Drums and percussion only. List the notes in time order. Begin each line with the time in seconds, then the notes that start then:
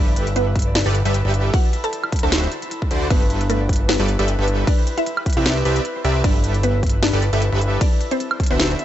0.16 closed hi-hat
0.27 closed hi-hat
0.36 closed hi-hat
0.56 kick, closed hi-hat
0.59 closed hi-hat
0.62 closed hi-hat
0.75 snare, closed hi-hat
0.95 closed hi-hat
1.05 closed hi-hat
1.14 closed hi-hat
1.34 closed hi-hat
1.54 kick, closed hi-hat, crash
1.73 closed hi-hat
1.84 closed hi-hat
1.93 closed hi-hat
2.04 high woodblock
2.12 kick, closed hi-hat
2.16 closed hi-hat
2.19 closed hi-hat
2.32 snare, closed hi-hat
2.52 closed hi-hat
2.62 closed hi-hat
2.71 closed hi-hat
2.82 kick
2.91 closed hi-hat
3.10 kick, closed hi-hat, crash
3.30 closed hi-hat
3.41 closed hi-hat
3.50 closed hi-hat
3.69 kick, closed hi-hat
3.73 closed hi-hat
3.76 closed hi-hat
3.89 snare, closed hi-hat
4.08 closed hi-hat
4.19 closed hi-hat
4.28 closed hi-hat
4.48 closed hi-hat
4.67 kick, closed hi-hat, crash
4.87 closed hi-hat
4.98 closed hi-hat
5.06 closed hi-hat
5.17 high woodblock
5.26 kick, closed hi-hat
5.30 closed hi-hat
5.33 closed hi-hat
5.46 snare, closed hi-hat
5.65 closed hi-hat
5.76 closed hi-hat
5.85 closed hi-hat
6.05 closed hi-hat
6.24 kick, closed hi-hat, crash
6.44 closed hi-hat
6.54 closed hi-hat
6.63 closed hi-hat
6.83 kick, closed hi-hat
6.87 closed hi-hat
6.90 closed hi-hat
7.03 snare, closed hi-hat
7.22 closed hi-hat
7.33 closed hi-hat
7.42 closed hi-hat
7.61 closed hi-hat
7.81 kick, closed hi-hat, crash
8.01 closed hi-hat
8.11 closed hi-hat
8.20 closed hi-hat
8.31 high woodblock
8.40 kick, closed hi-hat
8.44 closed hi-hat
8.46 closed hi-hat
8.60 snare, closed hi-hat
8.79 closed hi-hat